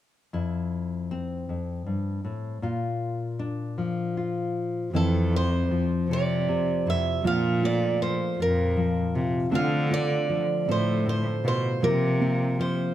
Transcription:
0.33 1.48 F2 medium
0.33 2.59 E4 soft
1.11 2.59 C4 soft
1.49 1.86 F2 soft
1.86 2.24 G2 soft
2.25 2.62 A2 soft
2.62 4.89 A#2 medium
2.62 4.16 F4 soft
3.39 4.89 D4 soft
3.78 5.70 F3 soft
4.17 4.90 F4 soft
4.93 5.81 F2 medium
4.93 7.24 F2 medium
4.93 5.33 E3 medium
4.93 7.20 C4 soft
4.93 7.25 C4 medium
4.93 5.32 E4 medium
4.93 5.35 A4 medium
5.33 6.86 E4 soft
5.33 6.13 C5 medium
5.71 8.01 F3 medium
6.10 6.68 C3 medium
6.10 7.27 A4 medium
6.10 6.89 D5 medium
6.48 7.24 C3 medium
6.86 7.01 F2 medium
6.86 7.20 E4 soft
6.86 7.24 E5 medium
7.24 9.48 A#2 medium
7.24 8.11 A#2 medium
7.24 9.53 F3 medium
7.24 9.48 D4 soft
7.24 9.51 F4 medium
7.24 7.63 F4 soft
7.24 7.65 F5 medium
7.62 8.38 A3 soft
7.62 8.40 F4 soft
7.62 7.99 D5 medium
8.01 8.76 F3 medium
8.01 8.40 C5 medium
8.38 8.96 F2 medium
8.38 9.15 F4 soft
8.38 9.22 A#4 medium
8.77 9.51 F3 medium
9.15 9.29 C3 medium
9.15 9.53 F4 medium
9.51 11.77 D3 medium
9.51 10.39 D3 medium
9.51 9.89 A3 medium
9.51 11.83 C4 medium
9.51 11.82 F4 medium
9.51 9.90 F4 medium
9.51 10.68 A4 medium
9.51 9.90 F5 medium
9.90 10.66 A3 soft
9.90 11.44 F4 medium
9.90 10.71 D5 medium
10.29 12.58 F3 medium
10.68 11.26 A2 medium
10.68 11.90 A3 medium
10.68 11.78 A4 medium
10.68 11.08 C5 medium
11.06 11.78 A2 medium
11.06 11.47 C5 medium
11.45 11.59 B2 medium
11.45 11.78 F4 soft
11.45 11.85 C5 medium
11.82 12.59 C3 medium
11.82 12.70 C3 medium
11.82 12.94 F3 medium
11.82 12.94 A#3 medium
11.82 12.20 F4 medium
11.82 12.94 G4 medium
11.82 12.56 A#4 medium
12.21 12.94 A#3 soft
12.21 12.93 F4 soft
12.59 12.94 F3 medium
12.59 12.94 C5 medium

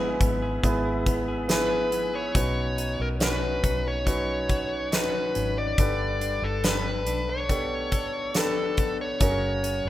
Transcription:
0.00 0.17 G#1 medium
0.00 0.18 G#2 medium
0.00 0.17 G#3 medium
0.00 0.63 G#3 medium
0.00 0.21 B3 medium
0.00 0.64 B3 medium
0.00 0.64 E4 medium
0.00 0.84 E4 medium
0.00 0.41 G#4 medium
0.00 0.64 G#4 medium
0.00 2.32 G#4 medium
0.00 0.65 B4 medium
0.00 2.32 E5 soft
0.00 2.32 B5 medium
0.21 0.61 G#1 medium
0.21 1.06 B3 medium
0.21 kick medium
0.21 closed hi-hat medium
0.42 1.27 G#4 medium
0.64 2.31 G#1 medium
0.64 2.44 G#3 medium
0.64 1.45 B3 medium
0.64 1.45 E4 medium
0.64 1.46 G#4 medium
0.64 1.46 B4 medium
0.64 kick medium
0.64 closed hi-hat medium
0.85 1.48 E4 medium
1.06 1.91 B3 medium
1.06 kick medium
1.06 closed hi-hat medium
1.28 1.69 G#4 medium
1.49 2.31 B3 medium
1.49 2.31 E4 medium
1.49 2.44 E4 soft
1.49 2.31 G#4 medium
1.49 2.31 B4 medium
1.49 2.17 B4 medium
1.49 snare medium
1.49 closed hi-hat medium
1.71 2.12 G#4 medium
1.91 5.35 B3 soft
1.91 closed hi-hat medium
2.13 2.44 G#4 soft
2.13 3.03 C#5 medium
2.34 2.95 B1 medium
2.34 5.78 B2 medium
2.34 3.17 C#4 medium
2.34 3.17 D#4 soft
2.34 3.17 F#4 soft
2.34 3.17 B4 medium
2.34 kick medium
2.34 closed hi-hat medium
2.78 3.62 D#4 soft
2.78 closed hi-hat soft
3.00 3.60 B1 medium
3.00 3.07 A#4 medium
3.20 4.02 C#4 medium
3.20 4.02 D#4 soft
3.20 4.48 F#4 medium
3.20 4.02 F#4 soft
3.20 4.03 B4 medium
3.20 3.88 B4 medium
3.20 snare medium
3.20 closed hi-hat medium
3.63 5.31 B1 medium
3.63 4.90 D#4 soft
3.63 kick medium
3.63 closed hi-hat medium
3.88 4.97 C#5 medium
4.06 5.78 F#3 medium
4.06 4.88 C#4 medium
4.06 4.88 D#4 soft
4.06 4.88 F#4 soft
4.06 4.89 B4 medium
4.06 kick medium
4.06 closed hi-hat medium
4.49 5.87 F#4 medium
4.49 kick medium
4.49 closed hi-hat medium
4.92 5.74 C#4 medium
4.92 5.86 D#4 soft
4.92 5.74 D#4 soft
4.92 5.74 F#4 medium
4.92 5.74 B4 medium
4.92 5.60 B4 medium
4.92 snare medium
4.92 closed hi-hat medium
5.35 5.76 G#1 medium
5.35 5.87 C#4 soft
5.35 closed hi-hat soft
5.58 6.46 D5 medium
5.78 6.39 G1 medium
5.78 7.03 G2 medium
5.78 7.03 D3 soft
5.78 9.21 G3 medium
5.78 6.60 D4 medium
5.78 6.60 G4 medium
5.78 6.60 A4 medium
5.78 6.61 B4 medium
5.78 kick medium
5.78 closed hi-hat medium
6.21 7.06 D4 soft
6.21 closed hi-hat medium
6.42 7.07 G1 medium
6.42 6.65 A4 medium
6.64 7.45 D4 medium
6.64 7.45 G4 soft
6.64 7.90 A4 medium
6.64 7.46 A4 soft
6.64 7.46 B4 medium
6.64 7.31 B4 medium
6.64 snare medium
6.64 closed hi-hat medium
7.07 9.17 B1 medium
7.07 8.34 D4 soft
7.07 closed hi-hat medium
7.29 8.39 C#5 medium
7.49 8.76 B3 medium
7.49 8.31 D4 medium
7.49 8.31 G4 medium
7.49 8.31 A4 medium
7.49 8.32 C#5 medium
7.49 kick medium
7.49 closed hi-hat medium
7.92 9.29 A4 medium
7.92 kick medium
7.92 closed hi-hat medium
8.34 9.29 D4 soft
8.34 9.17 D4 medium
8.34 9.17 G4 soft
8.34 9.17 A4 medium
8.34 8.96 A4 medium
8.34 9.17 B4 medium
8.34 snare medium
8.34 closed hi-hat medium
8.77 9.29 B3 soft
8.77 kick medium
8.77 closed hi-hat medium
9.01 9.89 C#5 medium
9.20 9.81 F#1 medium
9.20 9.89 F#2 medium
9.20 9.89 C#3 medium
9.20 9.89 C#4 medium
9.20 9.89 F#4 medium
9.20 9.89 G#4 medium
9.20 9.89 A#4 medium
9.20 kick medium
9.20 closed hi-hat medium
9.63 9.89 C#4 soft
9.63 closed hi-hat medium
9.85 9.89 F#1 medium

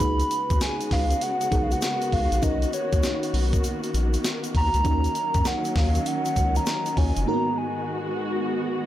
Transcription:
0.00 0.23 C#2 loud
0.00 2.40 C#3 medium
0.00 2.40 G#3 medium
0.00 4.81 B3 medium
0.00 1.48 D#4 medium
0.00 1.48 F#4 medium
0.00 4.81 F#4 medium
0.00 1.49 G#4 medium
0.00 1.49 B4 medium
0.00 0.57 B5 loud
0.00 kick loud
0.00 closed hi-hat medium
0.00 shaker medium
0.20 closed hi-hat medium
0.20 shaker soft
0.31 closed hi-hat medium
0.31 shaker medium
0.50 0.58 D#2 medium
0.50 kick loud
0.50 closed hi-hat medium
0.50 shaker soft
0.61 0.94 G#5 loud
0.61 snare loud
0.61 closed hi-hat medium
0.61 shaker medium
0.81 closed hi-hat medium
0.81 shaker soft
0.91 1.14 C#2 loud
0.91 1.24 F5 medium
0.91 kick loud
0.91 snare medium
0.91 open hi-hat medium
1.10 closed hi-hat medium
1.10 shaker soft
1.21 1.63 F#5 loud
1.21 closed hi-hat medium
1.21 shaker medium
1.41 closed hi-hat soft
1.41 shaker medium
1.51 1.75 B1 medium
1.51 2.41 D#4 medium
1.51 2.42 F#4 soft
1.51 2.43 G#4 soft
1.51 2.43 A#4 medium
1.51 kick loud
1.51 closed hi-hat medium
1.51 shaker medium
1.63 1.74 F5 medium
1.71 2.15 F#5 loud
1.71 closed hi-hat soft
1.71 shaker soft
1.82 snare loud
1.82 closed hi-hat medium
1.82 shaker medium
2.01 closed hi-hat medium
2.01 shaker soft
2.12 2.27 C#2 loud
2.12 2.45 F5 medium
2.12 kick medium
2.12 open hi-hat medium
2.32 2.40 A#1 loud
2.32 closed hi-hat medium
2.32 shaker soft
2.42 2.66 B1 loud
2.42 8.86 D#3 medium
2.42 7.24 A#3 medium
2.42 4.80 C#4 medium
2.42 4.81 D#4 medium
2.42 4.81 F#4 medium
2.42 4.82 A#4 medium
2.42 2.75 D#5 medium
2.42 kick loud
2.42 closed hi-hat medium
2.42 shaker medium
2.62 closed hi-hat medium
2.62 shaker soft
2.73 3.34 C#5 medium
2.73 closed hi-hat medium
2.73 shaker medium
2.93 3.01 D#2 medium
2.93 kick loud
2.93 closed hi-hat medium
2.93 shaker soft
3.03 snare loud
3.03 closed hi-hat medium
3.03 shaker medium
3.23 closed hi-hat medium
3.23 shaker medium
3.34 3.56 B1 medium
3.34 open hi-hat medium
3.53 kick loud
3.53 closed hi-hat medium
3.53 shaker soft
3.64 closed hi-hat medium
3.64 shaker medium
3.83 closed hi-hat medium
3.83 shaker medium
3.94 4.17 A#1 medium
3.94 closed hi-hat medium
3.94 shaker soft
4.14 closed hi-hat soft
4.14 shaker soft
4.24 snare loud
4.24 closed hi-hat medium
4.24 shaker medium
4.44 closed hi-hat medium
4.44 shaker soft
4.55 4.69 D#2 medium
4.55 5.48 A#5 loud
4.55 kick medium
4.55 open hi-hat medium
4.74 4.82 C#2 loud
4.74 closed hi-hat medium
4.74 shaker soft
4.84 5.08 D#2 loud
4.84 7.25 F#3 medium
4.84 6.93 C#4 medium
4.84 7.25 C#4 medium
4.84 6.93 D#4 medium
4.84 6.93 F#4 medium
4.84 6.94 A#4 medium
4.84 kick loud
4.84 closed hi-hat medium
4.84 shaker medium
5.04 closed hi-hat soft
5.04 shaker soft
5.15 closed hi-hat medium
5.15 shaker medium
5.34 5.43 F#2 medium
5.34 kick loud
5.34 closed hi-hat medium
5.34 shaker soft
5.45 5.79 F#5 loud
5.45 snare loud
5.45 closed hi-hat medium
5.45 shaker medium
5.65 closed hi-hat medium
5.65 shaker soft
5.76 5.99 D#2 loud
5.76 6.09 F5 loud
5.76 kick loud
5.76 snare medium
5.76 open hi-hat medium
5.95 closed hi-hat medium
5.95 shaker soft
6.06 6.58 F#5 loud
6.06 closed hi-hat medium
6.06 shaker medium
6.25 closed hi-hat soft
6.25 shaker medium
6.36 6.59 C#2 loud
6.36 kick medium
6.36 closed hi-hat medium
6.36 shaker soft
6.56 6.99 A#5 loud
6.56 closed hi-hat soft
6.56 shaker medium
6.66 snare loud
6.66 closed hi-hat medium
6.66 shaker medium
6.86 closed hi-hat medium
6.86 shaker soft
6.97 7.12 D#2 medium
6.97 7.27 C#4 soft
6.97 7.27 F4 soft
6.97 7.27 F#4 soft
6.97 7.28 C#5 medium
6.97 7.27 G#5 loud
6.97 kick medium
6.97 open hi-hat medium
7.16 7.25 F#1 medium
7.16 closed hi-hat medium
7.16 shaker soft
7.26 8.86 G#2 medium
7.26 8.86 G#3 medium
7.26 7.36 A#3 medium
7.26 8.86 B3 medium
7.26 8.86 D#4 medium
7.26 8.86 F#4 loud
7.26 8.86 F#4 medium
7.26 8.86 A#4 medium
7.26 7.59 A#5 loud
7.33 8.86 B3 medium
7.58 8.18 G#5 medium

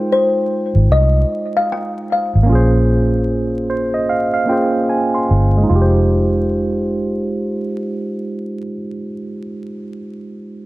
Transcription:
0.00 2.42 G#3 medium
0.00 2.44 D#4 medium
0.00 2.45 F4 medium
0.00 0.13 G#4 medium
0.00 2.48 C5 medium
0.00 2.47 G5 medium
0.12 0.93 C5 medium
0.75 0.88 G#1 medium
0.90 1.23 C2 medium
0.90 1.51 D#5 medium
1.57 1.63 F5 loud
1.72 2.12 G5 loud
2.12 4.87 F5 medium
2.35 2.48 G#1 medium
2.43 4.42 A#3 medium
2.43 4.44 C#4 medium
2.50 4.71 A#1 loud
2.50 4.45 F4 medium
2.50 4.47 G#4 medium
2.55 3.69 C5 medium
3.70 3.93 C5 medium
3.94 4.08 D#5 medium
4.09 4.32 F5 medium
4.34 4.48 F5 medium
4.46 5.68 A#3 medium
4.46 5.68 C#4 soft
4.46 5.68 F4 medium
4.46 4.86 G5 medium
4.51 5.70 G#4 soft
4.51 5.71 C5 medium
4.89 5.12 G#5 medium
5.14 5.66 C6 medium
5.31 5.63 G1 medium
5.57 8.55 G#3 medium
5.63 8.61 D#4 medium
5.69 8.68 F1 medium
5.69 8.67 F4 medium
5.75 8.73 G4 medium
5.82 8.79 C5 medium

